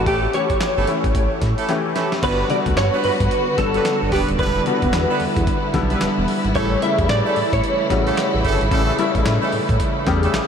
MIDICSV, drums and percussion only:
0, 0, Header, 1, 2, 480
1, 0, Start_track
1, 0, Tempo, 540541
1, 58, Time_signature, 4, 2, 24, 8
1, 9298, End_track
2, 0, Start_track
2, 0, Title_t, "Drums"
2, 57, Note_on_c, 9, 36, 116
2, 57, Note_on_c, 9, 42, 79
2, 146, Note_off_c, 9, 36, 0
2, 146, Note_off_c, 9, 42, 0
2, 297, Note_on_c, 9, 42, 64
2, 386, Note_off_c, 9, 42, 0
2, 442, Note_on_c, 9, 42, 52
2, 443, Note_on_c, 9, 36, 94
2, 531, Note_off_c, 9, 42, 0
2, 532, Note_off_c, 9, 36, 0
2, 538, Note_on_c, 9, 38, 118
2, 541, Note_on_c, 9, 42, 80
2, 545, Note_on_c, 9, 39, 94
2, 627, Note_off_c, 9, 38, 0
2, 630, Note_off_c, 9, 42, 0
2, 634, Note_off_c, 9, 39, 0
2, 776, Note_on_c, 9, 42, 67
2, 865, Note_off_c, 9, 42, 0
2, 924, Note_on_c, 9, 36, 97
2, 926, Note_on_c, 9, 42, 58
2, 1013, Note_off_c, 9, 36, 0
2, 1015, Note_off_c, 9, 42, 0
2, 1019, Note_on_c, 9, 36, 90
2, 1020, Note_on_c, 9, 42, 72
2, 1108, Note_off_c, 9, 36, 0
2, 1108, Note_off_c, 9, 42, 0
2, 1257, Note_on_c, 9, 38, 66
2, 1257, Note_on_c, 9, 42, 68
2, 1258, Note_on_c, 9, 36, 81
2, 1346, Note_off_c, 9, 36, 0
2, 1346, Note_off_c, 9, 38, 0
2, 1346, Note_off_c, 9, 42, 0
2, 1403, Note_on_c, 9, 42, 48
2, 1491, Note_off_c, 9, 42, 0
2, 1498, Note_on_c, 9, 38, 53
2, 1498, Note_on_c, 9, 42, 83
2, 1586, Note_off_c, 9, 42, 0
2, 1587, Note_off_c, 9, 38, 0
2, 1737, Note_on_c, 9, 42, 67
2, 1738, Note_on_c, 9, 38, 75
2, 1826, Note_off_c, 9, 38, 0
2, 1826, Note_off_c, 9, 42, 0
2, 1884, Note_on_c, 9, 38, 84
2, 1885, Note_on_c, 9, 42, 49
2, 1973, Note_off_c, 9, 38, 0
2, 1974, Note_off_c, 9, 42, 0
2, 1978, Note_on_c, 9, 36, 112
2, 1978, Note_on_c, 9, 42, 74
2, 1978, Note_on_c, 9, 49, 91
2, 2067, Note_off_c, 9, 36, 0
2, 2067, Note_off_c, 9, 42, 0
2, 2067, Note_off_c, 9, 49, 0
2, 2217, Note_on_c, 9, 42, 70
2, 2306, Note_off_c, 9, 42, 0
2, 2363, Note_on_c, 9, 42, 55
2, 2364, Note_on_c, 9, 36, 101
2, 2451, Note_off_c, 9, 42, 0
2, 2453, Note_off_c, 9, 36, 0
2, 2458, Note_on_c, 9, 38, 108
2, 2461, Note_on_c, 9, 42, 81
2, 2466, Note_on_c, 9, 39, 96
2, 2547, Note_off_c, 9, 38, 0
2, 2550, Note_off_c, 9, 42, 0
2, 2554, Note_off_c, 9, 39, 0
2, 2697, Note_on_c, 9, 46, 69
2, 2785, Note_off_c, 9, 46, 0
2, 2845, Note_on_c, 9, 36, 96
2, 2846, Note_on_c, 9, 42, 58
2, 2934, Note_off_c, 9, 36, 0
2, 2935, Note_off_c, 9, 42, 0
2, 2940, Note_on_c, 9, 42, 71
2, 3029, Note_off_c, 9, 42, 0
2, 3178, Note_on_c, 9, 36, 83
2, 3178, Note_on_c, 9, 38, 60
2, 3178, Note_on_c, 9, 42, 72
2, 3267, Note_off_c, 9, 36, 0
2, 3267, Note_off_c, 9, 38, 0
2, 3267, Note_off_c, 9, 42, 0
2, 3324, Note_on_c, 9, 42, 49
2, 3413, Note_off_c, 9, 42, 0
2, 3418, Note_on_c, 9, 38, 102
2, 3418, Note_on_c, 9, 42, 86
2, 3426, Note_on_c, 9, 39, 82
2, 3507, Note_off_c, 9, 38, 0
2, 3507, Note_off_c, 9, 42, 0
2, 3515, Note_off_c, 9, 39, 0
2, 3657, Note_on_c, 9, 46, 72
2, 3660, Note_on_c, 9, 36, 85
2, 3746, Note_off_c, 9, 46, 0
2, 3749, Note_off_c, 9, 36, 0
2, 3805, Note_on_c, 9, 42, 50
2, 3894, Note_off_c, 9, 42, 0
2, 3898, Note_on_c, 9, 36, 121
2, 3898, Note_on_c, 9, 42, 73
2, 3986, Note_off_c, 9, 36, 0
2, 3987, Note_off_c, 9, 42, 0
2, 4137, Note_on_c, 9, 42, 66
2, 4226, Note_off_c, 9, 42, 0
2, 4282, Note_on_c, 9, 42, 55
2, 4283, Note_on_c, 9, 36, 91
2, 4370, Note_off_c, 9, 42, 0
2, 4372, Note_off_c, 9, 36, 0
2, 4377, Note_on_c, 9, 38, 112
2, 4380, Note_on_c, 9, 42, 86
2, 4385, Note_on_c, 9, 39, 87
2, 4466, Note_off_c, 9, 38, 0
2, 4469, Note_off_c, 9, 42, 0
2, 4474, Note_off_c, 9, 39, 0
2, 4616, Note_on_c, 9, 46, 68
2, 4705, Note_off_c, 9, 46, 0
2, 4764, Note_on_c, 9, 36, 101
2, 4764, Note_on_c, 9, 42, 58
2, 4853, Note_off_c, 9, 36, 0
2, 4853, Note_off_c, 9, 42, 0
2, 4858, Note_on_c, 9, 42, 72
2, 4859, Note_on_c, 9, 36, 92
2, 4947, Note_off_c, 9, 36, 0
2, 4947, Note_off_c, 9, 42, 0
2, 5095, Note_on_c, 9, 38, 67
2, 5096, Note_on_c, 9, 42, 62
2, 5097, Note_on_c, 9, 36, 82
2, 5184, Note_off_c, 9, 38, 0
2, 5185, Note_off_c, 9, 42, 0
2, 5186, Note_off_c, 9, 36, 0
2, 5241, Note_on_c, 9, 42, 53
2, 5330, Note_off_c, 9, 42, 0
2, 5335, Note_on_c, 9, 42, 90
2, 5336, Note_on_c, 9, 38, 104
2, 5343, Note_on_c, 9, 39, 80
2, 5424, Note_off_c, 9, 42, 0
2, 5425, Note_off_c, 9, 38, 0
2, 5432, Note_off_c, 9, 39, 0
2, 5576, Note_on_c, 9, 46, 65
2, 5665, Note_off_c, 9, 46, 0
2, 5724, Note_on_c, 9, 42, 46
2, 5813, Note_off_c, 9, 42, 0
2, 5816, Note_on_c, 9, 42, 78
2, 5817, Note_on_c, 9, 36, 115
2, 5905, Note_off_c, 9, 42, 0
2, 5906, Note_off_c, 9, 36, 0
2, 6058, Note_on_c, 9, 42, 67
2, 6147, Note_off_c, 9, 42, 0
2, 6202, Note_on_c, 9, 42, 54
2, 6203, Note_on_c, 9, 36, 98
2, 6291, Note_off_c, 9, 42, 0
2, 6292, Note_off_c, 9, 36, 0
2, 6298, Note_on_c, 9, 38, 117
2, 6301, Note_on_c, 9, 42, 86
2, 6305, Note_on_c, 9, 39, 97
2, 6386, Note_off_c, 9, 38, 0
2, 6390, Note_off_c, 9, 42, 0
2, 6394, Note_off_c, 9, 39, 0
2, 6537, Note_on_c, 9, 46, 69
2, 6625, Note_off_c, 9, 46, 0
2, 6685, Note_on_c, 9, 36, 95
2, 6687, Note_on_c, 9, 42, 59
2, 6773, Note_off_c, 9, 36, 0
2, 6776, Note_off_c, 9, 42, 0
2, 6781, Note_on_c, 9, 42, 78
2, 6869, Note_off_c, 9, 42, 0
2, 7018, Note_on_c, 9, 36, 90
2, 7018, Note_on_c, 9, 38, 68
2, 7018, Note_on_c, 9, 42, 72
2, 7107, Note_off_c, 9, 36, 0
2, 7107, Note_off_c, 9, 38, 0
2, 7107, Note_off_c, 9, 42, 0
2, 7164, Note_on_c, 9, 42, 51
2, 7253, Note_off_c, 9, 42, 0
2, 7258, Note_on_c, 9, 38, 100
2, 7258, Note_on_c, 9, 42, 93
2, 7266, Note_on_c, 9, 39, 86
2, 7347, Note_off_c, 9, 38, 0
2, 7347, Note_off_c, 9, 42, 0
2, 7355, Note_off_c, 9, 39, 0
2, 7499, Note_on_c, 9, 46, 66
2, 7500, Note_on_c, 9, 36, 79
2, 7588, Note_off_c, 9, 46, 0
2, 7589, Note_off_c, 9, 36, 0
2, 7647, Note_on_c, 9, 42, 48
2, 7736, Note_off_c, 9, 42, 0
2, 7738, Note_on_c, 9, 36, 112
2, 7739, Note_on_c, 9, 42, 76
2, 7827, Note_off_c, 9, 36, 0
2, 7828, Note_off_c, 9, 42, 0
2, 7979, Note_on_c, 9, 42, 70
2, 8068, Note_off_c, 9, 42, 0
2, 8124, Note_on_c, 9, 42, 58
2, 8125, Note_on_c, 9, 36, 96
2, 8213, Note_off_c, 9, 36, 0
2, 8213, Note_off_c, 9, 42, 0
2, 8219, Note_on_c, 9, 38, 119
2, 8222, Note_on_c, 9, 42, 81
2, 8226, Note_on_c, 9, 39, 103
2, 8308, Note_off_c, 9, 38, 0
2, 8311, Note_off_c, 9, 42, 0
2, 8315, Note_off_c, 9, 39, 0
2, 8457, Note_on_c, 9, 46, 73
2, 8546, Note_off_c, 9, 46, 0
2, 8605, Note_on_c, 9, 36, 99
2, 8607, Note_on_c, 9, 42, 56
2, 8694, Note_off_c, 9, 36, 0
2, 8695, Note_off_c, 9, 42, 0
2, 8700, Note_on_c, 9, 36, 92
2, 8701, Note_on_c, 9, 42, 76
2, 8789, Note_off_c, 9, 36, 0
2, 8790, Note_off_c, 9, 42, 0
2, 8938, Note_on_c, 9, 38, 72
2, 8939, Note_on_c, 9, 36, 85
2, 8939, Note_on_c, 9, 42, 68
2, 9027, Note_off_c, 9, 38, 0
2, 9027, Note_off_c, 9, 42, 0
2, 9028, Note_off_c, 9, 36, 0
2, 9085, Note_on_c, 9, 42, 53
2, 9174, Note_off_c, 9, 42, 0
2, 9180, Note_on_c, 9, 38, 106
2, 9180, Note_on_c, 9, 42, 93
2, 9188, Note_on_c, 9, 39, 87
2, 9269, Note_off_c, 9, 38, 0
2, 9269, Note_off_c, 9, 42, 0
2, 9277, Note_off_c, 9, 39, 0
2, 9298, End_track
0, 0, End_of_file